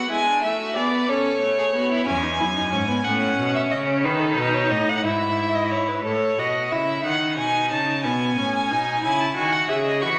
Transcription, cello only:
2.07 2.41 E2 medium
2.40 2.74 F#2 loud
2.72 3.05 G#2 medium
3.05 3.37 A2 medium
3.38 3.71 B2 medium
3.71 4.06 C#3 medium
4.04 4.36 D#3 medium
4.37 4.72 B2 loud
4.70 5.05 A2 medium
5.03 6.03 G#2 medium
6.04 6.35 A2 medium
6.37 6.72 B2 medium
6.70 7.03 C#3 medium
7.04 7.39 D#3 medium
7.37 7.72 B2 medium
7.71 8.05 C#3 medium
8.04 8.36 B2 medium
8.37 8.72 A2 medium
8.70 9.03 B2 medium
9.04 9.35 C#3 medium
9.36 9.68 D#3 medium
9.69 10.04 C#3 medium
10.03 10.19 E3 medium

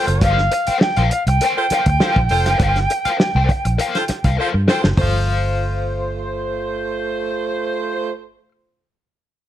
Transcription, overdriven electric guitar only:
0.07 muted overdriven electric guitar stroke soft
0.22 0.37 A#4 medium
0.22 0.38 C5 medium
0.22 0.38 F5 loud
0.52 muted overdriven electric guitar stroke soft
0.67 0.79 A#4 medium
0.67 0.79 C5 medium
0.67 0.78 G5 medium
0.81 muted overdriven electric guitar stroke soft
0.97 1.11 A#4 medium
0.97 1.11 C5 medium
0.97 1.11 F5 medium
1.12 muted overdriven electric guitar stroke soft
1.28 muted overdriven electric guitar stroke soft
1.42 1.57 A#4 medium
1.42 1.57 C5 loud
1.42 1.58 G5 loud
1.58 muted overdriven electric guitar stroke soft
1.72 1.83 A#4 medium
1.72 1.84 C5 medium
1.72 1.84 F5 medium
1.88 muted overdriven electric guitar stroke medium
2.01 2.16 A#4 medium
2.01 2.17 C5 loud
2.01 2.17 F5 loud
2.31 muted overdriven electric guitar stroke soft
2.46 2.58 A#4 medium
2.46 2.57 C5 medium
2.46 2.57 F5 medium
2.61 2.76 A#4 medium
2.61 2.76 C5 medium
2.61 2.77 F5 medium
2.91 muted overdriven electric guitar stroke soft
3.05 3.17 A#4 soft
3.05 3.17 C5 medium
3.05 3.16 F5 medium
3.20 muted overdriven electric guitar stroke soft
3.36 3.49 A#4 medium
3.36 3.49 C5 medium
3.36 3.49 G5 medium
3.50 muted overdriven electric guitar stroke soft
3.65 muted overdriven electric guitar stroke soft
3.78 3.94 A#4 medium
3.78 3.95 C5 medium
3.78 3.95 F5 loud
4.09 muted overdriven electric guitar stroke soft
4.25 4.36 A#4 soft
4.25 4.36 C5 medium
4.25 4.35 F5 medium
4.38 4.54 A#4 medium
4.38 4.54 C5 medium
4.38 4.52 F5 medium
4.54 muted overdriven electric guitar stroke soft
4.68 4.80 A#4 medium
4.68 4.80 C5 medium
4.68 4.81 G5 medium
4.83 muted overdriven electric guitar stroke soft
4.98 8.48 C5 medium
4.98 8.51 F5 medium

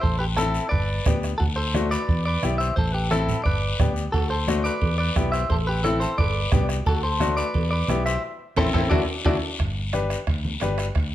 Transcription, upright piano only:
0.38 0.62 C4 medium
0.38 0.62 E4 medium
0.38 0.62 A4 medium
1.06 1.30 B3 medium
1.06 1.30 D4 medium
1.06 1.30 G4 medium
1.74 1.98 A3 medium
1.74 1.98 D4 medium
1.74 1.99 F#4 medium
2.43 2.67 B3 medium
2.43 2.67 E4 medium
2.43 2.67 G4 medium
3.11 3.35 C4 medium
3.11 3.35 E4 medium
3.11 3.35 A4 medium
3.79 4.03 B3 medium
3.79 4.03 D4 medium
3.79 4.04 G4 medium
4.48 4.71 A3 medium
4.48 4.72 D4 medium
4.48 4.72 F#4 medium
5.16 5.40 B3 medium
5.16 5.40 E4 medium
5.16 5.40 G4 medium
5.84 6.08 C4 medium
5.84 6.08 E4 medium
5.84 6.08 A4 medium
6.52 6.76 B3 medium
6.52 6.76 D4 medium
6.52 6.76 G4 medium
7.19 7.44 A3 medium
7.19 7.44 D4 medium
7.19 7.44 F#4 medium
7.88 8.12 B3 medium
7.88 8.13 E4 medium
7.88 8.13 G4 medium
8.57 8.68 C4 loud
8.57 8.68 E4 loud
8.57 8.68 A4 loud
8.74 8.85 C4 medium
8.74 8.85 E4 medium
8.74 8.85 A4 medium
8.91 9.02 D4 medium
8.91 9.02 E4 loud
8.91 9.02 F#4 loud
9.25 9.36 D4 medium
9.25 9.36 E4 medium
9.25 9.37 F#4 medium
9.93 10.17 D4 medium
9.93 10.17 G4 medium
9.93 10.18 B4 medium
10.62 10.86 D4 medium
10.62 10.86 G4 medium
10.62 10.86 B4 medium

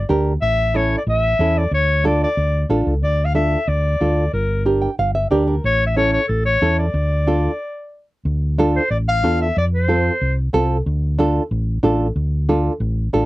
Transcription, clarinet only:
0.42 0.78 E5 loud
0.76 0.97 C#5 medium
0.97 1.02 D5 medium
1.09 1.59 E5 loud
1.57 1.73 D5 medium
1.74 2.04 C#5 medium
2.06 2.21 D5 medium
2.24 2.68 D5 medium
3.04 3.26 D5 loud
3.25 3.35 F5 medium
3.35 3.69 E5 medium
3.68 4.32 D5 medium
4.33 4.64 A#4 medium
5.65 5.85 C#5 loud
5.86 5.96 E5 medium
5.97 6.12 C#5 loud
6.13 6.27 C#5 medium
6.28 6.44 A4 medium
6.45 6.76 C#5 loud
6.79 8.05 D5 medium
8.76 8.90 C5 medium
8.91 8.98 D5 medium
9.08 9.38 F5 loud
9.41 9.56 E5 medium
9.58 9.65 D5 loud
9.74 10.35 C5 medium

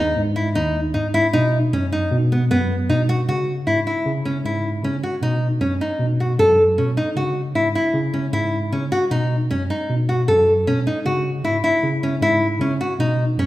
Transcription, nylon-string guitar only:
0.00 0.21 D#4 medium
0.36 0.48 E4 medium
0.55 0.79 D#4 medium
0.94 1.06 D#4 medium
1.14 1.26 E4 medium
1.33 1.57 D#4 medium
1.73 1.85 C#4 medium
1.92 2.16 D#4 medium
2.32 2.44 B3 medium
2.51 2.74 B3 medium
2.90 3.01 D#4 medium
3.09 3.21 F#4 medium
3.29 3.52 F#4 medium
3.67 3.79 E4 medium
3.87 4.10 E4 medium
4.25 4.37 C#4 medium
4.45 4.69 E4 medium
4.84 4.96 C#4 medium
5.03 5.15 F#4 medium
5.23 5.46 D#4 medium
5.61 5.73 C#4 medium
5.81 6.05 D#4 medium
6.20 6.32 F#4 medium
6.39 6.63 A4 medium
6.78 6.90 C#4 medium
6.97 7.09 D#4 medium
7.17 7.40 F#4 medium
7.55 7.67 E4 medium
7.75 7.99 E4 medium
8.14 8.26 C#4 medium
8.33 8.57 E4 medium
8.72 8.84 C#4 medium
8.92 9.04 F#4 medium
9.11 9.35 D#4 medium
9.51 9.62 C#4 medium
9.70 9.94 D#4 medium
10.09 10.21 F#4 medium
10.28 10.52 A4 medium
10.67 10.79 C#4 medium
10.87 10.98 D#4 medium
11.06 11.29 F#4 medium
11.44 11.56 E4 medium
11.64 11.88 E4 medium
12.03 12.15 C#4 medium
12.22 12.46 E4 medium
12.61 12.73 C#4 medium
12.81 12.92 F#4 medium
13.00 13.24 D#4 medium
13.39 13.46 C#4 medium

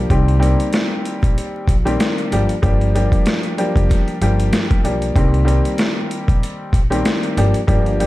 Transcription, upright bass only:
0.10 0.53 C2 loud
1.23 1.35 A#1 medium
1.68 1.96 A#1 medium
2.32 2.47 G1 medium
2.63 3.06 G1 loud
3.76 3.88 F1 medium
4.21 4.49 G1 medium
4.84 5.12 B1 medium
5.16 5.59 C2 loud
6.28 6.41 A#1 medium
6.73 7.01 A#1 medium
7.37 7.52 G1 loud
7.68 8.07 G1 loud

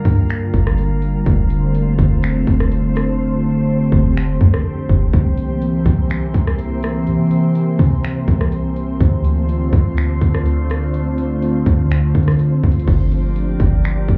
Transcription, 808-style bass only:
0.05 0.52 G2 loud
0.54 1.23 G1 loud
1.26 1.96 F1 loud
1.99 2.45 F1 loud
2.47 3.88 F1 loud
3.92 4.39 F1 loud
4.41 4.87 F2 loud
4.89 5.13 F1 loud
5.13 5.83 C2 loud
5.86 6.32 C2 loud
6.34 7.08 C2 loud
7.07 7.76 C3 loud
7.79 8.26 C3 loud
8.28 8.98 C2 loud
9.01 9.70 D2 loud
9.73 10.19 D2 loud
10.21 11.63 D2 loud
11.66 12.13 D2 loud
12.15 12.61 D3 loud
12.63 12.87 D2 loud
12.88 13.57 G1 loud
13.60 14.06 G1 loud
14.08 14.18 G1 loud

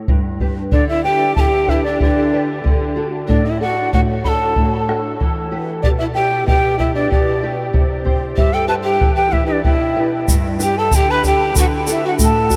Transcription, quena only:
0.72 0.87 D5 medium
0.89 1.03 E5 medium
1.04 1.34 G5 loud
1.36 1.41 A5 medium
1.40 1.71 G5 medium
1.69 1.83 E5 medium
1.84 1.99 D5 medium
2.02 2.46 D5 medium
3.29 3.47 D5 medium
3.46 3.61 E5 medium
3.61 3.90 F#5 medium
3.94 4.01 F#5 loud
4.24 4.30 B5 medium
4.29 4.84 A5 medium
5.82 5.88 D5 medium
5.98 6.04 E5 medium
6.14 6.44 G5 loud
6.47 6.77 G5 loud
6.79 6.94 E5 medium
6.95 7.09 D5 medium
7.12 7.56 D5 medium
8.38 8.55 E5 medium
8.54 8.68 G5 medium
8.69 8.75 A5 medium
8.84 9.15 G5 medium
9.16 9.34 G5 medium
9.32 9.47 E5 medium
9.48 9.63 D5 medium
9.65 10.10 E5 medium
10.61 10.80 G5 medium
10.78 10.97 A5 medium
10.95 11.12 G5 loud
11.11 11.25 B5 loud
11.27 11.55 G5 loud
11.60 11.67 F#5 medium
11.92 12.05 E5 medium
12.08 12.14 F#5 medium
12.24 12.56 A5 medium

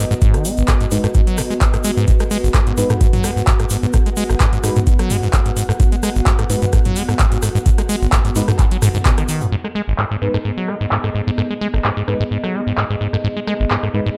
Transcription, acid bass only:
0.11 0.15 G#2 loud
0.22 0.36 G#2 loud
0.34 0.47 D#3 loud
0.45 0.52 G#3 loud
0.58 0.63 G#1 medium
0.68 0.75 G#2 medium
0.81 0.87 G#2 medium
0.92 0.98 G#2 medium
1.04 1.08 G#2 loud
1.15 1.22 G#2 medium
1.27 1.39 F#3 medium
1.38 1.42 G#2 loud
1.50 1.54 G#3 medium
1.61 1.65 B3 medium
1.74 1.77 G#2 medium
1.85 1.91 G#3 loud
1.97 2.06 G#2 loud
2.08 2.12 G#2 loud
2.20 2.24 G#3 medium
2.31 2.38 G#3 loud
2.44 2.49 G#1 medium
2.54 2.61 G#2 medium
2.67 2.73 G#2 medium
2.78 2.84 G#2 medium
2.90 2.94 G#2 loud
3.01 3.08 G#2 medium
3.13 3.26 F#3 medium
3.24 3.31 G#3 loud
3.36 3.42 G#2 medium
3.47 3.54 G#2 medium
3.60 3.66 G#2 medium
3.71 3.77 G#2 medium
3.83 3.87 G#2 loud
3.94 3.98 G#2 medium
4.06 4.10 G#3 medium
4.17 4.24 G#3 loud
4.30 4.35 G#1 medium
4.40 4.47 G#2 medium
4.53 4.59 G#2 medium
4.64 4.70 G#2 medium
4.76 4.80 G#2 loud
4.87 4.94 G#2 medium
4.99 5.12 F#3 medium
5.10 5.17 G#3 loud
5.23 5.29 G#2 medium
5.33 5.40 G#2 medium
5.46 5.52 G#2 medium
5.57 5.63 G#2 medium
5.69 5.73 G#2 loud
5.80 5.84 G#2 loud
5.92 5.96 G#3 medium
6.03 6.10 G#3 loud
6.16 6.22 G#1 medium
6.26 6.33 G#2 medium
6.39 6.45 G#2 medium
6.50 6.56 G#2 medium
6.62 6.66 G#2 loud
6.73 6.80 G#2 medium
6.85 6.98 F#3 medium
6.96 7.03 G#3 loud
7.09 7.15 G#2 medium
7.19 7.26 G#2 medium
7.32 7.38 G#2 medium
7.43 7.50 G#2 medium
7.55 7.59 G#2 loud
7.66 7.70 G#2 loud
7.78 7.82 G#3 medium
7.89 7.96 G#3 loud
8.02 8.08 G#1 medium
8.12 8.19 G#2 medium
8.25 8.31 G#2 medium
8.36 8.43 G#2 medium
8.48 8.52 G#2 loud
8.59 8.66 G#2 medium
8.71 8.77 F#3 medium
8.82 8.89 G#2 loud
8.95 8.98 G#2 loud
9.05 9.12 B2 medium
9.18 9.24 D#3 medium
9.29 9.43 D#3 medium
9.41 9.47 G#2 medium
9.52 9.56 G#2 medium
9.64 9.68 G#3 medium
9.75 9.82 G#3 loud
9.88 9.94 G#1 medium
9.98 10.05 G#2 medium
10.11 10.17 G#2 medium
10.22 10.29 G#2 medium
10.34 10.38 G#2 loud
10.45 10.52 G#2 medium
10.57 10.70 F#3 medium
10.68 10.75 G#3 loud
10.81 10.87 G#2 medium
10.91 10.98 G#2 medium
11.04 11.10 G#2 medium
11.15 11.22 G#2 medium
11.27 11.31 G#2 loud
11.38 11.42 G#2 medium
11.51 11.54 G#3 medium
11.61 11.68 G#3 loud
11.74 11.80 G#1 medium
11.85 11.91 G#2 medium
11.97 12.03 G#2 medium
12.08 12.15 G#2 medium
12.20 12.24 G#2 medium
12.31 12.38 G#2 medium
12.44 12.56 F#3 medium
12.54 12.61 G#3 loud
12.67 12.73 G#2 medium
12.78 12.84 G#2 medium
12.90 12.96 G#2 medium
13.01 13.08 G#2 medium
13.13 13.17 G#2 loud
13.24 13.28 G#2 medium
13.37 13.40 G#3 medium
13.47 13.54 G#3 loud
13.60 13.66 G#1 medium
13.71 13.77 G#2 medium
13.83 13.89 G#2 medium
13.94 14.01 G#2 medium
14.06 14.10 G#2 loud

